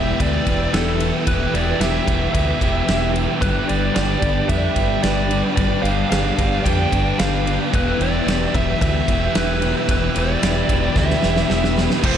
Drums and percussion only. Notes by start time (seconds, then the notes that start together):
0.20 kick, ride
0.47 kick, ride
0.74 snare, ride
1.00 ride
1.27 kick, ride
1.55 ride
1.81 snare, ride
2.08 kick, ride
2.35 kick, ride
2.61 kick, ride
2.88 snare, ride
3.16 ride
3.42 kick, ride
3.69 ride
3.96 snare, ride
4.22 kick, ride
4.49 kick, ride
4.76 kick, ride
5.03 snare, ride
5.31 ride
5.57 kick, ride
5.85 ride
6.12 snare, ride
6.38 kick, ride
6.66 kick, ride
6.92 kick, ride
7.19 snare, ride
7.47 ride
7.74 kick, ride
8.01 ride
8.28 snare, ride
8.54 kick, ride
8.81 kick, ride
9.08 kick, ride
9.35 snare, ride
9.62 ride
9.89 kick, ride
10.16 ride
10.43 snare, ride
10.69 kick, ride
10.96 kick, snare
11.10 snare
11.22 snare
11.36 snare
11.50 snare
11.64 snare
11.78 snare
11.90 snare
12.04 kick, crash